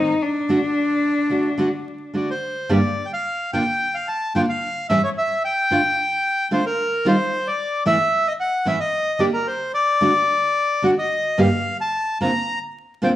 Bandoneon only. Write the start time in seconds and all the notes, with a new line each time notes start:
2.16 D5
2.30 C5
2.72 D5
3.06 G5
3.13 F5
3.53 G5
3.94 F5
4.08 A5
4.35 G5
4.49 F5
4.89 E5
5.04 C#5
5.18 E5
5.45 G5
6.53 C5
6.66 A#4
7.08 C5
7.47 D5
7.87 E5
8.27 D#5
8.40 F#5
8.67 E5
8.80 D#5
9.19 D5
9.34 A#4
9.47 C5
9.74 D5
10.85 F#5
10.99 D#5
11.40 F5
11.81 A5
12.22 A#5
13.04 G5